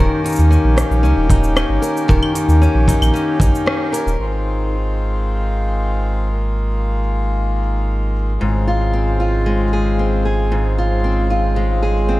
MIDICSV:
0, 0, Header, 1, 5, 480
1, 0, Start_track
1, 0, Tempo, 526316
1, 1909, Time_signature, 4, 2, 24, 8
1, 11125, End_track
2, 0, Start_track
2, 0, Title_t, "Steel-string acoustic guitar"
2, 0, Program_c, 0, 25
2, 0, Note_on_c, 0, 51, 89
2, 0, Note_on_c, 0, 63, 63
2, 0, Note_on_c, 0, 70, 69
2, 217, Note_off_c, 0, 63, 0
2, 221, Note_on_c, 0, 63, 62
2, 461, Note_on_c, 0, 61, 69
2, 694, Note_off_c, 0, 63, 0
2, 698, Note_on_c, 0, 63, 68
2, 928, Note_off_c, 0, 61, 0
2, 939, Note_on_c, 0, 61, 68
2, 1176, Note_off_c, 0, 63, 0
2, 1180, Note_on_c, 0, 63, 68
2, 1411, Note_off_c, 0, 61, 0
2, 1422, Note_on_c, 0, 61, 64
2, 1648, Note_off_c, 0, 70, 0
2, 1658, Note_on_c, 0, 70, 65
2, 1892, Note_off_c, 0, 70, 0
2, 1893, Note_off_c, 0, 51, 0
2, 1897, Note_on_c, 0, 51, 87
2, 1903, Note_on_c, 0, 70, 71
2, 2139, Note_off_c, 0, 63, 0
2, 2143, Note_on_c, 0, 63, 60
2, 2375, Note_off_c, 0, 61, 0
2, 2386, Note_on_c, 0, 61, 73
2, 2618, Note_off_c, 0, 63, 0
2, 2622, Note_on_c, 0, 63, 75
2, 2849, Note_off_c, 0, 61, 0
2, 2860, Note_on_c, 0, 61, 66
2, 3097, Note_off_c, 0, 63, 0
2, 3100, Note_on_c, 0, 63, 65
2, 3328, Note_off_c, 0, 61, 0
2, 3339, Note_on_c, 0, 61, 63
2, 3568, Note_off_c, 0, 70, 0
2, 3579, Note_on_c, 0, 70, 73
2, 3872, Note_off_c, 0, 61, 0
2, 3872, Note_off_c, 0, 70, 0
2, 4329, Note_off_c, 0, 51, 0
2, 4329, Note_off_c, 0, 63, 0
2, 7669, Note_on_c, 0, 44, 72
2, 7912, Note_on_c, 0, 65, 53
2, 8148, Note_on_c, 0, 60, 51
2, 8385, Note_off_c, 0, 65, 0
2, 8389, Note_on_c, 0, 65, 59
2, 8628, Note_on_c, 0, 56, 58
2, 8873, Note_on_c, 0, 68, 56
2, 9109, Note_off_c, 0, 60, 0
2, 9113, Note_on_c, 0, 60, 57
2, 9347, Note_off_c, 0, 68, 0
2, 9351, Note_on_c, 0, 68, 55
2, 9580, Note_off_c, 0, 44, 0
2, 9591, Note_on_c, 0, 44, 75
2, 9831, Note_off_c, 0, 65, 0
2, 9835, Note_on_c, 0, 65, 49
2, 10066, Note_off_c, 0, 60, 0
2, 10069, Note_on_c, 0, 60, 52
2, 10305, Note_off_c, 0, 65, 0
2, 10309, Note_on_c, 0, 65, 58
2, 10541, Note_off_c, 0, 56, 0
2, 10544, Note_on_c, 0, 56, 59
2, 10781, Note_off_c, 0, 68, 0
2, 10785, Note_on_c, 0, 68, 59
2, 11019, Note_off_c, 0, 60, 0
2, 11023, Note_on_c, 0, 60, 57
2, 11125, Note_off_c, 0, 44, 0
2, 11125, Note_off_c, 0, 56, 0
2, 11125, Note_off_c, 0, 60, 0
2, 11125, Note_off_c, 0, 65, 0
2, 11125, Note_off_c, 0, 68, 0
2, 11125, End_track
3, 0, Start_track
3, 0, Title_t, "Accordion"
3, 0, Program_c, 1, 21
3, 0, Note_on_c, 1, 51, 86
3, 0, Note_on_c, 1, 58, 77
3, 0, Note_on_c, 1, 61, 83
3, 0, Note_on_c, 1, 67, 89
3, 3787, Note_off_c, 1, 61, 0
3, 3794, Note_off_c, 1, 58, 0
3, 3795, Note_off_c, 1, 51, 0
3, 3796, Note_off_c, 1, 67, 0
3, 3820, Note_on_c, 1, 56, 58
3, 3825, Note_on_c, 1, 51, 66
3, 3830, Note_on_c, 1, 60, 62
3, 3831, Note_on_c, 1, 65, 73
3, 5730, Note_off_c, 1, 60, 0
3, 5764, Note_on_c, 1, 58, 60
3, 7630, Note_off_c, 1, 51, 0
3, 7657, Note_off_c, 1, 58, 0
3, 7668, Note_on_c, 1, 49, 71
3, 7671, Note_on_c, 1, 60, 63
3, 11125, Note_off_c, 1, 49, 0
3, 11125, Note_off_c, 1, 56, 0
3, 11125, Note_off_c, 1, 60, 0
3, 11125, Note_off_c, 1, 65, 0
3, 11125, End_track
4, 0, Start_track
4, 0, Title_t, "Sub bass"
4, 0, Program_c, 2, 38
4, 351, Note_on_c, 2, 39, 98
4, 522, Note_off_c, 2, 39, 0
4, 586, Note_on_c, 2, 34, 87
4, 760, Note_off_c, 2, 34, 0
4, 825, Note_on_c, 2, 34, 88
4, 942, Note_on_c, 2, 37, 96
4, 956, Note_off_c, 2, 34, 0
4, 1031, Note_off_c, 2, 37, 0
4, 1065, Note_on_c, 2, 27, 99
4, 1493, Note_off_c, 2, 27, 0
4, 1543, Note_on_c, 2, 31, 76
4, 1632, Note_off_c, 2, 31, 0
4, 1909, Note_on_c, 2, 27, 100
4, 1995, Note_off_c, 2, 27, 0
4, 2263, Note_on_c, 2, 39, 95
4, 2438, Note_off_c, 2, 39, 0
4, 2504, Note_on_c, 2, 34, 79
4, 2678, Note_off_c, 2, 34, 0
4, 2748, Note_on_c, 2, 34, 88
4, 2835, Note_off_c, 2, 34, 0
4, 3099, Note_on_c, 2, 34, 91
4, 3190, Note_off_c, 2, 34, 0
4, 3706, Note_on_c, 2, 27, 104
4, 3793, Note_off_c, 2, 27, 0
4, 3822, Note_on_c, 2, 32, 73
4, 7641, Note_off_c, 2, 32, 0
4, 7675, Note_on_c, 2, 32, 81
4, 11125, Note_off_c, 2, 32, 0
4, 11125, End_track
5, 0, Start_track
5, 0, Title_t, "Drums"
5, 235, Note_on_c, 9, 46, 94
5, 238, Note_on_c, 9, 69, 33
5, 266, Note_off_c, 9, 69, 0
5, 266, Note_on_c, 9, 69, 41
5, 294, Note_off_c, 9, 69, 0
5, 294, Note_on_c, 9, 69, 55
5, 323, Note_off_c, 9, 69, 0
5, 323, Note_on_c, 9, 69, 63
5, 326, Note_off_c, 9, 46, 0
5, 353, Note_off_c, 9, 69, 0
5, 353, Note_on_c, 9, 69, 44
5, 444, Note_off_c, 9, 69, 0
5, 476, Note_on_c, 9, 69, 33
5, 567, Note_off_c, 9, 69, 0
5, 708, Note_on_c, 9, 37, 80
5, 708, Note_on_c, 9, 46, 88
5, 712, Note_on_c, 9, 69, 76
5, 799, Note_off_c, 9, 37, 0
5, 799, Note_off_c, 9, 46, 0
5, 803, Note_off_c, 9, 69, 0
5, 834, Note_on_c, 9, 69, 44
5, 925, Note_off_c, 9, 69, 0
5, 954, Note_on_c, 9, 69, 27
5, 1045, Note_off_c, 9, 69, 0
5, 1182, Note_on_c, 9, 36, 94
5, 1188, Note_on_c, 9, 46, 90
5, 1273, Note_off_c, 9, 36, 0
5, 1279, Note_off_c, 9, 46, 0
5, 1310, Note_on_c, 9, 69, 44
5, 1401, Note_off_c, 9, 69, 0
5, 1428, Note_on_c, 9, 37, 84
5, 1428, Note_on_c, 9, 75, 83
5, 1432, Note_on_c, 9, 69, 36
5, 1519, Note_off_c, 9, 37, 0
5, 1519, Note_off_c, 9, 75, 0
5, 1523, Note_off_c, 9, 69, 0
5, 1665, Note_on_c, 9, 46, 93
5, 1669, Note_on_c, 9, 69, 76
5, 1757, Note_off_c, 9, 46, 0
5, 1760, Note_off_c, 9, 69, 0
5, 1796, Note_on_c, 9, 69, 42
5, 1888, Note_off_c, 9, 69, 0
5, 1907, Note_on_c, 9, 36, 110
5, 1914, Note_on_c, 9, 69, 31
5, 1999, Note_off_c, 9, 36, 0
5, 2006, Note_off_c, 9, 69, 0
5, 2030, Note_on_c, 9, 75, 64
5, 2121, Note_off_c, 9, 75, 0
5, 2147, Note_on_c, 9, 46, 93
5, 2151, Note_on_c, 9, 69, 79
5, 2238, Note_off_c, 9, 46, 0
5, 2242, Note_off_c, 9, 69, 0
5, 2272, Note_on_c, 9, 69, 43
5, 2364, Note_off_c, 9, 69, 0
5, 2395, Note_on_c, 9, 69, 31
5, 2486, Note_off_c, 9, 69, 0
5, 2625, Note_on_c, 9, 36, 59
5, 2633, Note_on_c, 9, 46, 91
5, 2636, Note_on_c, 9, 69, 76
5, 2716, Note_off_c, 9, 36, 0
5, 2724, Note_off_c, 9, 46, 0
5, 2728, Note_off_c, 9, 69, 0
5, 2755, Note_on_c, 9, 75, 63
5, 2758, Note_on_c, 9, 69, 45
5, 2846, Note_off_c, 9, 75, 0
5, 2849, Note_off_c, 9, 69, 0
5, 2878, Note_on_c, 9, 69, 29
5, 2970, Note_off_c, 9, 69, 0
5, 3099, Note_on_c, 9, 36, 111
5, 3114, Note_on_c, 9, 46, 90
5, 3117, Note_on_c, 9, 69, 77
5, 3190, Note_off_c, 9, 36, 0
5, 3205, Note_off_c, 9, 46, 0
5, 3209, Note_off_c, 9, 69, 0
5, 3239, Note_on_c, 9, 69, 42
5, 3330, Note_off_c, 9, 69, 0
5, 3351, Note_on_c, 9, 37, 87
5, 3442, Note_off_c, 9, 37, 0
5, 3594, Note_on_c, 9, 46, 92
5, 3597, Note_on_c, 9, 69, 73
5, 3685, Note_off_c, 9, 46, 0
5, 3688, Note_off_c, 9, 69, 0
5, 3717, Note_on_c, 9, 69, 42
5, 3809, Note_off_c, 9, 69, 0
5, 3836, Note_on_c, 9, 69, 25
5, 3928, Note_off_c, 9, 69, 0
5, 4079, Note_on_c, 9, 69, 63
5, 4170, Note_off_c, 9, 69, 0
5, 4562, Note_on_c, 9, 69, 55
5, 4653, Note_off_c, 9, 69, 0
5, 4681, Note_on_c, 9, 69, 36
5, 4772, Note_off_c, 9, 69, 0
5, 5036, Note_on_c, 9, 69, 65
5, 5127, Note_off_c, 9, 69, 0
5, 5158, Note_on_c, 9, 69, 35
5, 5249, Note_off_c, 9, 69, 0
5, 5515, Note_on_c, 9, 69, 61
5, 5606, Note_off_c, 9, 69, 0
5, 5637, Note_on_c, 9, 69, 37
5, 5728, Note_off_c, 9, 69, 0
5, 5759, Note_on_c, 9, 69, 26
5, 5851, Note_off_c, 9, 69, 0
5, 5999, Note_on_c, 9, 69, 63
5, 6090, Note_off_c, 9, 69, 0
5, 6117, Note_on_c, 9, 69, 37
5, 6208, Note_off_c, 9, 69, 0
5, 6238, Note_on_c, 9, 69, 28
5, 6329, Note_off_c, 9, 69, 0
5, 6417, Note_on_c, 9, 69, 65
5, 6509, Note_off_c, 9, 69, 0
5, 6600, Note_on_c, 9, 69, 38
5, 6691, Note_off_c, 9, 69, 0
5, 6720, Note_on_c, 9, 69, 23
5, 6811, Note_off_c, 9, 69, 0
5, 6957, Note_on_c, 9, 69, 69
5, 7049, Note_off_c, 9, 69, 0
5, 7084, Note_on_c, 9, 69, 36
5, 7175, Note_off_c, 9, 69, 0
5, 7204, Note_on_c, 9, 69, 31
5, 7295, Note_off_c, 9, 69, 0
5, 7439, Note_on_c, 9, 69, 63
5, 7466, Note_off_c, 9, 69, 0
5, 7466, Note_on_c, 9, 69, 53
5, 7497, Note_off_c, 9, 69, 0
5, 7497, Note_on_c, 9, 69, 44
5, 7529, Note_off_c, 9, 69, 0
5, 7529, Note_on_c, 9, 69, 33
5, 7557, Note_off_c, 9, 69, 0
5, 7557, Note_on_c, 9, 69, 33
5, 7649, Note_off_c, 9, 69, 0
5, 7677, Note_on_c, 9, 69, 28
5, 7768, Note_off_c, 9, 69, 0
5, 7916, Note_on_c, 9, 69, 72
5, 8007, Note_off_c, 9, 69, 0
5, 8038, Note_on_c, 9, 69, 38
5, 8129, Note_off_c, 9, 69, 0
5, 8155, Note_on_c, 9, 69, 27
5, 8247, Note_off_c, 9, 69, 0
5, 8398, Note_on_c, 9, 69, 65
5, 8490, Note_off_c, 9, 69, 0
5, 8520, Note_on_c, 9, 69, 39
5, 8611, Note_off_c, 9, 69, 0
5, 8645, Note_on_c, 9, 69, 26
5, 8736, Note_off_c, 9, 69, 0
5, 8823, Note_on_c, 9, 69, 69
5, 8914, Note_off_c, 9, 69, 0
5, 9003, Note_on_c, 9, 69, 37
5, 9094, Note_off_c, 9, 69, 0
5, 9120, Note_on_c, 9, 69, 31
5, 9211, Note_off_c, 9, 69, 0
5, 9360, Note_on_c, 9, 69, 67
5, 9452, Note_off_c, 9, 69, 0
5, 9602, Note_on_c, 9, 69, 30
5, 9694, Note_off_c, 9, 69, 0
5, 9842, Note_on_c, 9, 69, 65
5, 9933, Note_off_c, 9, 69, 0
5, 9961, Note_on_c, 9, 69, 18
5, 10022, Note_off_c, 9, 69, 0
5, 10022, Note_on_c, 9, 69, 21
5, 10078, Note_off_c, 9, 69, 0
5, 10078, Note_on_c, 9, 69, 29
5, 10137, Note_off_c, 9, 69, 0
5, 10137, Note_on_c, 9, 69, 32
5, 10228, Note_off_c, 9, 69, 0
5, 10316, Note_on_c, 9, 69, 64
5, 10407, Note_off_c, 9, 69, 0
5, 10558, Note_on_c, 9, 69, 28
5, 10649, Note_off_c, 9, 69, 0
5, 10796, Note_on_c, 9, 69, 64
5, 10888, Note_off_c, 9, 69, 0
5, 10917, Note_on_c, 9, 69, 38
5, 11008, Note_off_c, 9, 69, 0
5, 11034, Note_on_c, 9, 69, 32
5, 11125, Note_off_c, 9, 69, 0
5, 11125, End_track
0, 0, End_of_file